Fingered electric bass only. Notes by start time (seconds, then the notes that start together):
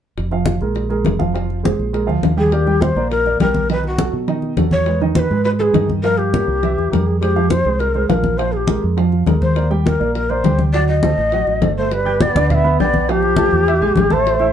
0.17 F1
0.62 A#1
1.06 F1
1.79 A#1
2.08 D2
2.22 D#2
2.96 A#1
3.40 B1
4.13 B2
4.57 E2
5.31 G#2
5.74 G2
6.48 C2
6.77 E2
6.92 F2
7.66 C2
8.09 A#1
8.84 F2
9.27 D#2
10.00 A#1
10.44 D2
11.18 A1
11.47 A1
11.62 G1
12.35 D2
12.80 B1
13.52 E2
13.81 A#1
13.96 A1